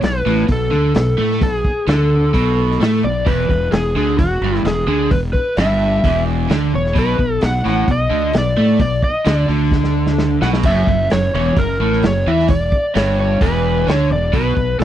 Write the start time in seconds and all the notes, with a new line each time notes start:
0.02 B1 B2 B4, snare, open hi-hat
0.26 A1 A2
0.48 B1 B2, kick, open hi-hat
0.52 A4
0.71 D2 D3
0.94 B1 B2, snare, open hi-hat
1.18 A2 A3
1.31 snare
1.41 B1 B2 G#4, kick, open hi-hat
1.65 kick
1.87 D2 D3 A4, snare, open hi-hat
2.33 B1 B2, kick, open hi-hat
2.71 snare
2.80 A2 A3, snare, open hi-hat
3.03 B1 B2 D5
3.26 E1 E2 B4, kick, open hi-hat
3.49 E1 E2, kick
3.72 E1 E2 G#4, snare, open hi-hat
3.95 D2 D3 G#4
4.19 E1 E2 F#4, kick, open hi-hat
4.41 G1 G2
4.55 snare
4.64 E1 E2 G#4, snare, open hi-hat
4.87 D2 D3 G#4
5.11 E1 E2 B4, kick, open hi-hat
5.33 B4, kick
5.57 G1 G2 E5, snare, open hi-hat
6.04 E1 E2, kick, open hi-hat
6.49 D2 D3, snare, open hi-hat
6.73 E1 E2 C#5
6.86 snare
6.95 B1 B2, kick, open hi-hat
6.99 B4
7.19 B1 B2, kick
7.41 B1 B2, snare, open hi-hat
7.46 F#5
7.65 A1 A2
7.69 F#5
7.88 B1 B2 D#5, kick, open hi-hat
8.10 D2 D3
8.33 B1 B2, snare, open hi-hat
8.38 D5
8.57 A2 A3
8.79 B1 B2 D5, kick, open hi-hat
9.03 D#5, kick
9.25 D2 D3, snare, open hi-hat
9.48 D2 D3
9.72 kick, snare
9.84 snare
10.06 snare
10.18 snare
10.41 B1 B2 F#5, snare
10.53 snare
10.63 F#1 F#2 E5, kick, open hi-hat, crash
10.87 F#1 F#2, kick
11.10 F#1 F#2 C#5, snare, open hi-hat
11.34 E1 E2 C#5
11.56 F#1 F#2 A#4, kick, open hi-hat
11.80 A1 A2
11.93 snare
12.03 F#1 F#2 C#5, snare, open hi-hat
12.27 E2 E3 E5
12.39 snare
12.48 E1 E2 D5, kick, open hi-hat
12.72 kick
12.95 G1 G2 C#5, snare, open hi-hat
13.20 C#5
13.41 E1 E2 B4, kick, open hi-hat
13.87 D2 D3 C#5, snare, open hi-hat
14.10 E1 E2 D5
14.33 B1 B2 B4, kick, open hi-hat
14.55 B1 B2, kick
14.79 B1 B2 A4, open hi-hat